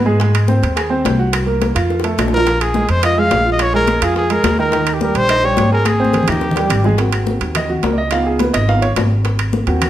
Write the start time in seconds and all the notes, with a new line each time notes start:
Already playing: G#2
0.06 G#3 G#4, high bongo
0.20 G#3 G#4, high bongo, high conga, high timbale
0.35 high conga, high timbale, claves
0.48 C4 C5, high bongo, high conga
0.63 D#2, high conga, high timbale
0.76 G#4 G#5, high bongo, high conga, high timbale, claves
0.90 C4 C5, high conga
1.05 C2, high bongo, low bongo, high conga, high timbale
1.19 F#4 F#5, high conga
1.33 high bongo, high conga, high timbale, claves
1.46 A#3 A#4, high conga
1.62 high bongo, high conga, high timbale
1.75 F2 F4 F5, high bongo, high conga, high timbale, claves
1.90 high bongo, high conga
2.00 high bongo
2.04 A3 A4, high conga, high timbale
2.18 A#1, low bongo, high conga, high timbale, low timbale, claves
2.28 low bongo
2.32 F3 F4 A#4, high conga
2.37 low bongo
2.46 F3 F4, high bongo, high conga, high timbale
2.60 G#4, high conga, high timbale, claves
2.74 G#3 G#4, high bongo, high conga
2.89 F2 C5, high conga, high timbale
3.03 F4 D#5 F5, high bongo, high conga, high timbale, claves
3.17 G#3 G#4 F5, high conga
3.31 A#1, high bongo, low bongo, high conga, high timbale
3.45 F4 F5, high conga
3.52 D#5
3.59 C#5, high bongo, high conga, high timbale, claves
3.73 G#3 G#4 A#4, high conga
3.87 high bongo, high conga, high timbale
4.02 F2 F4 G#4 F5, high bongo, high conga, high timbale, claves
4.16 G#4, high bongo, high conga
4.30 G#3 G#4 A#4, high bongo, high conga, high timbale
4.44 D#2, high bongo, low bongo, high conga, high timbale, claves
4.58 D#3 D#4 A#4, high bongo, high conga
4.72 D#3 D#4, high bongo, high conga, high timbale
4.86 high conga, high timbale, claves
4.94 G4
5.01 G3 G4 A#4, high bongo, high conga
5.15 A#1 C5, high conga, high timbale
5.29 D#4 D#5, high bongo, high conga, high timbale, claves
5.43 G3 G4 C#5, high conga
5.57 G#1, high bongo, low bongo, high conga, high timbale
5.71 G#4 A#4 G#5, high conga
5.85 G#4, high bongo, high conga, high timbale, claves
6.00 C4 C5
6.05 high conga
6.13 high bongo, low conga, high timbale
6.23 low conga
6.27 D#2 D#4 G4 D#5, high bongo, high timbale, claves
6.32 low conga
6.41 high bongo, low conga
6.51 low conga
6.56 G3 G4, high bongo, high timbale
6.61 low conga
6.70 G#1, low conga, high timbale, claves
6.84 G#3 G#4, low bongo
6.89 low conga
6.98 A#3 C4 F#4, high bongo, high conga, high timbale
7.13 high conga, high timbale, claves
7.27 high bongo, high conga
7.41 D#2, high conga, high timbale
7.55 D#5, high bongo, high conga, low conga, high timbale, claves
7.69 F#4, high conga, low conga
7.83 C#2 A#4, high bongo, low bongo, high conga, high timbale
7.93 D5
7.97 D#5, high conga
8.11 B3 D#4 F4 F5, high bongo, high conga, high timbale, claves
8.22 G4
8.26 G#4, high conga
8.39 B4, high bongo, high conga, high timbale
8.53 G#1 D#5, high bongo, high conga, high timbale, claves
8.68 B3 D#4 F4 F5, high bongo, high conga
8.82 C#5, high bongo, high conga, high timbale
8.96 G#1, high bongo, low bongo, high conga, high timbale, claves
9.10 high bongo, high conga
9.24 high bongo, high conga, high timbale
9.39 high conga, high timbale, claves
9.53 high bongo, high conga
9.66 D#2 A#3 C4 F#4, high conga, high timbale
9.81 high bongo, high conga, low conga, high timbale, claves